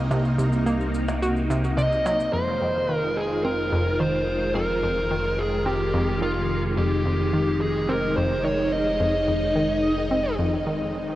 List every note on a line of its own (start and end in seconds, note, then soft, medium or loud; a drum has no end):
0.00 2.31 C2 medium
0.00 2.30 C3 medium
0.00 2.29 A#3 medium
0.00 2.30 D#4 medium
0.11 0.36 C3 medium
0.11 percussion blips soft
0.11 shaker soft
0.25 shaker soft
0.39 0.55 C3 medium
0.39 shaker medium
0.53 shaker soft
0.67 0.76 A#3 medium
0.67 shaker medium
0.81 shaker soft
0.95 shaker medium
1.08 percussion blips soft
1.08 shaker soft
1.22 1.47 F#4 medium
1.22 shaker medium
1.37 shaker soft
1.50 1.66 C3 medium
1.50 shaker medium
1.64 shaker medium
1.78 1.88 C3 medium
1.78 2.33 D#5 loud
1.78 shaker medium
1.92 shaker soft
2.06 2.15 F#3 medium
2.06 percussion blips soft
2.06 shaker medium
2.20 shaker soft
2.33 2.58 F2 medium
2.33 11.15 D#3 medium
2.33 11.15 G#3 medium
2.33 6.74 F4 medium
2.33 2.95 C5 loud
2.61 2.78 F2 medium
2.89 2.99 D#3 medium
2.95 3.19 A#4 loud
3.17 3.44 G#4 medium
3.44 3.69 C4 medium
3.44 4.00 A#4 medium
3.72 3.89 F2 loud
4.00 4.25 D#3 medium
4.00 4.55 C5 medium
4.55 4.80 F2 medium
4.55 5.41 A#4 loud
4.83 5.00 F2 medium
5.11 5.21 D#3 medium
5.39 5.66 G#4 medium
5.66 5.91 C4 medium
5.66 6.18 G4 medium
5.94 6.11 F2 loud
6.22 6.47 D#3 medium
6.22 6.61 F4 medium
6.78 7.02 F2 medium
6.78 11.15 D#4 medium
6.78 7.60 G4 medium
7.06 7.22 F2 medium
7.33 7.43 D#3 medium
7.61 7.90 G#4 medium
7.89 8.13 C4 medium
7.89 8.16 A#4 medium
8.17 8.33 F2 loud
8.17 8.44 C5 medium
8.44 8.69 D#3 medium
8.44 8.70 C#5 medium
8.73 10.35 D#5 medium
9.00 9.25 F2 medium
9.28 9.44 F2 medium
9.56 9.65 D#3 medium
10.11 10.36 C4 medium
10.39 10.55 F2 loud
10.67 10.91 D#3 medium